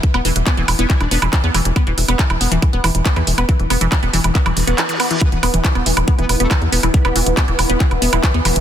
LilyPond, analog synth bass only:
\new Staff \with { instrumentName = "Analog synth bass" } { \clef bass \time 4/4 \key c \major \tempo 4 = 139 r16 e,,16 e,,16 e,,16 r16 e,,16 e,,16 e,,16 r16 e,,16 e,,16 e,,16 r16 e,16 e,,16 e,,16 | r16 e,,16 e,,16 e,,16 r16 e,,16 e,,16 e,,16 r16 e,,16 e,,16 e,,16 r16 e,16 e,,16 e,,16 | r16 e,,16 e,,16 e,,16 r16 e,,16 e,,16 e,,16 r16 e,,16 e,,16 e,,16 r4 | r16 e,,16 e,,16 e,,16 r16 e,,16 e,,16 e,,16 r16 e,,16 e,,16 e,,16 r16 e,16 e,,16 e,,16 |
r16 e,,16 e,,16 e,,16 r16 e,,16 e,,16 e,,16 r16 e,,16 e,,16 e,,16 r16 e,16 e,,16 e,,16 | }